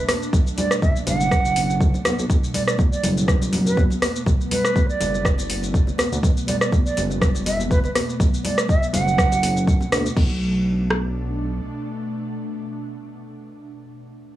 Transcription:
Already playing: ambient pad B2 A3 D4
0.09 cross-stick, open hi-hat, high conga, shaker
0.22 shaker
0.33 analog synth bass B1, kick, muted conga, shaker
0.47 shaker
0.58 flute D5, open hi-hat, muted conga, low conga, shaker
0.71 cross-stick, shaker
0.82 flute E5, kick, muted conga, high conga, shaker
0.96 shaker
1.06 analog synth bass F#1, flute F#5, open hi-hat, high conga, low conga, shaker
1.20 muted conga, shaker
1.31 kick, cross-stick, shaker
1.45 muted conga, shaker
1.56 open hi-hat, high conga, shaker
1.70 muted conga, shaker
1.81 analog synth bass F#1, kick, shaker
1.94 muted conga, shaker
2.05 analog synth bass B1, cross-stick, open hi-hat, high conga, shaker
2.18 analog synth bass B1, shaker
2.30 analog synth bass B1, ambient pad B3, kick, muted conga, shaker
2.44 shaker
2.54 flute D5, open hi-hat, muted conga, low conga, shaker
2.68 flute D5, cross-stick, shaker
2.78 kick, muted conga, high conga, shaker
2.92 flute D5, shaker
3.03 analog synth bass F#1, open hi-hat, high conga, low conga, shaker
3.17 muted conga, shaker
3.28 kick, cross-stick, low conga, shaker
3.42 muted conga, shaker
3.52 open hi-hat, high conga, low conga, shaker
3.66 flute B4, muted conga, high conga, shaker
3.77 kick, high conga, shaker
3.90 muted conga, shaker
4.02 cross-stick, open hi-hat, high conga, shaker
4.16 shaker
4.26 analog synth bass B1, kick, muted conga, shaker
4.41 shaker
4.51 flute B4, open hi-hat, muted conga, low conga, shaker
4.65 cross-stick, shaker
4.76 kick, muted conga, high conga, shaker
4.89 flute D5, shaker
5.00 analog synth bass F#1, open hi-hat, high conga, low conga, shaker
5.14 muted conga, shaker
5.25 kick, cross-stick, shaker
5.38 muted conga, shaker
5.50 open hi-hat, high conga, shaker
5.63 muted conga, shaker
5.74 kick, shaker
5.87 muted conga, shaker
5.98 cross-stick, open hi-hat, high conga, shaker
6.12 analog synth bass D2, shaker
6.23 analog synth bass B1, kick, muted conga, shaker
6.37 shaker
6.47 flute D5, open hi-hat, muted conga, low conga, shaker
6.61 flute D5, cross-stick, shaker
6.72 kick, muted conga, high conga, shaker
6.86 flute D5, shaker
6.97 analog synth bass F#1, open hi-hat, high conga, low conga, shaker
7.10 muted conga, shaker
7.22 kick, cross-stick, low conga, shaker
7.34 muted conga, shaker
7.46 flute E5, open hi-hat, high conga, low conga, shaker
7.59 muted conga, high conga, shaker
7.71 flute B4, kick, high conga, shaker
7.84 flute B4, muted conga, shaker
7.95 cross-stick, open hi-hat, high conga, shaker
8.09 shaker
8.20 analog synth bass B1, kick, muted conga, shaker
8.34 shaker
8.44 flute D5, open hi-hat, muted conga, low conga, shaker
8.58 cross-stick, shaker
8.68 flute E5, kick, muted conga, high conga, shaker
8.83 shaker
8.93 analog synth bass F#1, flute F#5, open hi-hat, high conga, low conga, shaker
9.06 muted conga, shaker
9.18 kick, cross-stick, shaker
9.32 muted conga, shaker
9.43 analog synth bass F#1, open hi-hat, high conga, shaker
9.56 muted conga, shaker
9.67 kick, shaker
9.81 muted conga, shaker
9.92 analog synth bass D2, cross-stick, open hi-hat, high conga, shaker
10.06 shaker
10.17 analog synth bass B1, ambient pad B2 A3 D4, kick, crash
10.90 cross-stick

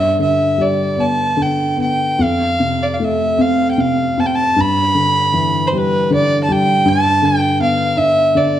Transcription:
Already playing: felt piano G2, fiddle E5
0.19 felt piano D3, fiddle E5
0.58 felt piano G3, fiddle D5
0.97 felt piano B3, fiddle A5
1.37 felt piano D3
1.42 fiddle G5
1.77 felt piano B3
1.82 fiddle G5
2.19 felt piano F2, fiddle F5
2.60 felt piano C3
2.83 fiddle D5
2.94 fiddle F5
3.00 felt piano A3, fiddle E5
3.38 felt piano C4, fiddle F5
3.71 fiddle G5
3.78 felt piano C3, fiddle F5
4.18 felt piano C4, fiddle A5
4.26 fiddle G5
4.35 fiddle A5
4.56 felt piano G2
4.60 fiddle B5
4.95 felt piano D3
5.33 felt piano E3
5.67 fiddle C5
5.73 felt piano G3
5.77 fiddle B4
6.10 felt piano D3, fiddle D5
6.44 fiddle A5
6.48 felt piano G3, fiddle G5
6.85 felt piano G2, fiddle A5
7.22 felt piano D3, fiddle G5
7.60 felt piano B3, fiddle F5
7.97 felt piano D4, fiddle E5
8.35 felt piano D3, fiddle D5

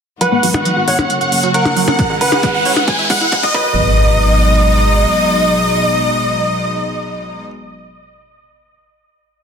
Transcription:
0.21 string section D#3 G#3 B3 F#4, synth pluck F#3, grand piano B4, digital synth lead F#5, supersaw synth F#5, closed hi-hat, riser
0.32 fm bass G#1, synth pluck B3
0.43 fm bass G#1, synth pluck F#3, open hi-hat
0.54 fm bass G#1, synth pluck D#4, digital synth lead F#5, supersaw synth F#5, closed hi-hat, percussion blips
0.65 synth pluck F#3, closed hi-hat
0.77 fm bass G#1, synth pluck F#4
0.88 fm bass G#1, grand piano C#5, supersaw synth F#5, digital synth lead F#5, open hi-hat
0.99 fm bass G#1, closed hi-hat, percussion blips
1.10 string section C#3 F#3 A#3 F#4, closed hi-hat
1.21 fm bass F#1, digital synth lead F#5, supersaw synth F#5, closed hi-hat
1.32 fm bass F#1, open hi-hat
1.43 fm bass F#1, synth pluck F#3, closed hi-hat
1.54 grand piano A#4, synth pluck C#5, digital synth lead F#5, supersaw synth F#5, closed hi-hat
1.65 fm bass F#1, closed hi-hat, percussion blips
1.77 fm bass F#1, synth pluck F#3, open hi-hat
1.88 fm bass F#1, synth pluck C#4, supersaw synth F#5, digital synth lead F#5, closed hi-hat, percussion blips
1.99 string section C#3 E3 G#3 E4, kick, closed hi-hat
2.10 fm bass C#2, synth pluck G#3
2.21 fm bass C#2, grand piano B4, digital synth lead F#5, supersaw synth F#5, open hi-hat
2.32 fm bass C#2, synth pluck G#4, closed hi-hat, percussion blips
2.43 synth pluck G#3, kick, closed hi-hat
2.54 fm bass C#2, digital synth lead F#5, supersaw synth F#5
2.65 fm bass C#2, synth pluck C#5, open hi-hat
2.77 fm bass C#2, closed hi-hat, percussion blips
2.88 string section B2, synth pluck G#3, digital synth lead G#5, supersaw synth G#5, kick, closed hi-hat
2.99 fm bass E2, synth pluck E5, closed hi-hat
3.10 fm bass E2, synth pluck G#3, supersaw synth F#5, digital synth lead F#5, kick, open hi-hat
3.21 fm bass E2, synth pluck E4, closed hi-hat
3.32 synth pluck G#3, kick, closed hi-hat
3.43 fm bass E2, supersaw synth D#5, digital synth lead D#5, kick, closed hi-hat
3.54 fm bass G#1, string section B2 F#3 G#3 D#4, synth pluck F#3, grand piano B4, supersaw synth D#5, digital synth lead D#5, kick, impact

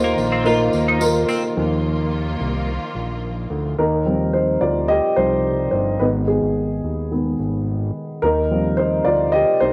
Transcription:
Already playing: analog synth bass D#2, upright piano D#3 A#3 D#4 F4 A#4 C5, string section D#3 A#3 F4
0.04 clean electric guitar A#3
0.18 analog synth bass A#1, tambourine
0.32 clean electric guitar C4
0.44 upright piano A#3 D#4 F4 A#4, clean electric guitar F4, tambourine
0.73 analog synth bass D#2, tambourine
0.88 clean electric guitar D#4
0.99 upright piano A#3 D#4 F4 A#4, tambourine
1.28 clean electric guitar C4, tambourine
1.56 analog synth bass D#2, upright piano D#3 F3 A#3, string section D#3 A#3 F4
2.41 analog synth bass C2
2.95 analog synth bass A#1
3.50 analog synth bass D2
3.79 analog synth bass D#2, upright piano D#4 A#4
4.05 upright piano F3 G3 C4
4.33 upright piano D#4 C5
4.61 analog synth bass D2, upright piano F4 D5
4.88 upright piano G4 D#5
5.16 analog synth bass C2, upright piano F3 G3 C4 D#4 C5
5.71 analog synth bass G1, upright piano D#4 C5
5.99 analog synth bass G#1, upright piano D#3 G#3 B3 D#4 B4
6.28 upright piano B3 G#4
6.42 analog synth bass G#1
6.84 analog synth bass D#2
7.12 upright piano D#3 G#3 B3
7.40 analog synth bass G#1
8.22 analog synth bass D#2, upright piano D#4 A#4
8.51 upright piano F3 G3 C4
8.77 upright piano D#4 C5
9.05 analog synth bass D2, upright piano F4 D5
9.32 upright piano G4 D#5
9.60 analog synth bass C2, upright piano D#4 C5

